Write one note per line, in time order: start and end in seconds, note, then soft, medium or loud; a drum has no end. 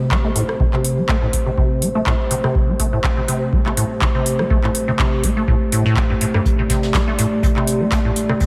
0.00 0.13 C3 medium
0.00 8.46 A3 medium
0.00 8.46 G4 medium
0.00 6.44 C5 medium
0.11 0.19 A3 loud
0.11 kick loud
0.11 clap loud
0.25 0.31 A3 medium
0.36 0.43 A2 medium
0.36 open hi-hat loud
0.49 cross-stick medium
0.60 0.64 C3 medium
0.60 kick loud
0.73 0.99 C3 medium
0.73 clap soft
0.84 open hi-hat loud
0.98 1.04 A3 loud
1.09 1.16 A3 medium
1.09 kick loud
1.09 clap loud
1.22 1.28 A2 medium
1.33 kick medium
1.33 open hi-hat loud
1.46 1.50 C3 medium
1.58 1.83 C3 medium
1.58 kick loud
1.82 1.89 A3 loud
1.82 open hi-hat loud
1.95 2.01 A3 medium
2.06 2.14 A2 medium
2.06 kick loud
2.06 clap loud
2.31 2.35 C3 medium
2.31 open hi-hat loud
2.44 2.70 C3 medium
2.44 cross-stick medium
2.55 kick loud
2.68 2.75 A3 loud
2.80 2.87 A3 medium
2.80 kick medium
2.80 open hi-hat loud
2.93 2.99 A2 medium
3.04 kick loud
3.04 clap loud
3.17 3.21 C3 medium
3.28 3.54 C3 medium
3.28 open hi-hat loud
3.53 3.60 A3 loud
3.53 kick loud
3.66 3.72 A3 medium
3.66 clap soft
3.77 3.84 A2 medium
3.77 open hi-hat loud
4.01 4.06 C3 medium
4.01 kick loud
4.01 clap loud
4.15 4.41 C3 medium
4.26 open hi-hat loud
4.39 4.45 A3 loud
4.39 cross-stick medium
4.50 4.58 A3 medium
4.50 kick loud
4.64 4.70 A2 medium
4.64 clap soft
4.75 open hi-hat loud
4.88 4.92 C3 medium
4.99 5.25 C3 medium
4.99 kick loud
4.99 clap loud
5.24 5.31 A3 loud
5.24 kick medium
5.24 open hi-hat loud
5.37 5.43 A3 medium
5.48 5.55 A2 medium
5.48 kick loud
5.72 5.83 A2 medium
5.72 open hi-hat loud
5.86 5.95 A2 loud
5.97 kick loud
5.97 clap loud
6.10 6.14 G2 medium
6.21 6.25 A2 medium
6.21 open hi-hat loud
6.34 6.40 G2 medium
6.34 cross-stick medium
6.45 8.46 D5 medium
6.45 kick loud
6.45 closed hi-hat medium
6.59 6.62 C3 medium
6.69 6.96 C3 medium
6.69 kick medium
6.69 snare soft
6.69 closed hi-hat medium
6.69 open hi-hat loud
6.83 snare medium
6.94 7.02 A3 loud
6.94 kick loud
6.94 snare loud
6.94 clap loud
6.94 closed hi-hat medium
7.08 7.14 A3 medium
7.19 7.26 A2 medium
7.19 closed hi-hat medium
7.19 open hi-hat loud
7.43 7.47 C3 medium
7.43 kick loud
7.43 closed hi-hat medium
7.56 7.82 C3 medium
7.56 clap soft
7.67 closed hi-hat medium
7.67 open hi-hat loud
7.81 7.87 A3 loud
7.91 7.99 A3 medium
7.91 kick loud
7.91 snare loud
7.91 clap loud
7.91 closed hi-hat medium
8.05 8.11 A2 medium
8.16 closed hi-hat medium
8.16 open hi-hat loud
8.29 8.33 C3 medium
8.29 cross-stick medium
8.40 8.46 C3 medium
8.40 kick loud
8.40 closed hi-hat medium